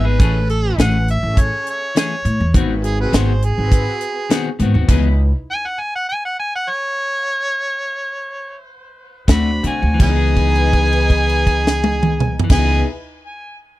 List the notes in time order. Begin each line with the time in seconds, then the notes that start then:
Already playing: G#1
0.05 B3 D#4 G#4 B4
0.19 A1 E3 A3 C#4 G#4 A4, kick, closed hi-hat
0.49 A4, closed hi-hat
0.64 C#4 G#4 B4
0.78 A1 E3 A3 C#4 G#4 F#5, snare, closed hi-hat
1.08 E5, closed hi-hat
1.23 A1 C#4 G#4 A4
1.37 C#5, kick, closed hi-hat
1.67 C#5, closed hi-hat
1.95 E3 A3 C#4 G#4 C#5, snare, closed hi-hat
2.25 A2, closed hi-hat
2.41 E2
2.54 G#1 D#3 B3 C4 F#4 B4, kick, closed hi-hat
2.84 G#4, closed hi-hat
2.98 C4 F#4 G#4 B4
3.13 G#1 D#3 B3 C4 F#4 C5, snare, closed hi-hat
3.42 G#4, closed hi-hat
3.57 G#1 C4 F#4 B4
3.72 kick, closed hi-hat
4.01 closed hi-hat
4.29 D#3 B3 C4 F#4, snare, closed hi-hat
4.59 G#2 D#3 B3 C4 F#4, closed hi-hat
4.74 D#2 B3 C4 F#4
4.88 C#2 E3 B3 D#4 E4 G#4 B4, kick, closed hi-hat, crash
5.51 G#5
5.67 F#5
5.80 G#5
5.96 F#5
6.09 G#5
6.25 F#5
6.40 G#5
6.55 F#5
6.70 C#5
9.27 D2 A3 C4 D4 F#4 C5 B5, kick, snare, closed hi-hat
9.63 D3 A3 C4 F#4 G#5, closed hi-hat
9.82 D2 C4 F#4
9.94 E3
9.99 C#2 B3 C#4 D#4 E4 G#4 B4, kick, crash
10.03 G#5
10.10 D#4
10.16 G#4
10.36 kick, crash
10.56 crash
10.73 kick, crash
10.93 crash
11.10 kick, crash
11.29 crash
11.47 kick, crash
11.67 snare
11.84 high tom
12.03 mid tom
12.20 mid tom
12.39 floor tom
12.44 E3
12.50 C#2 B3 D#4 E4 G#4 B4 G#5, kick, snare, crash
12.59 D#4
12.65 G#4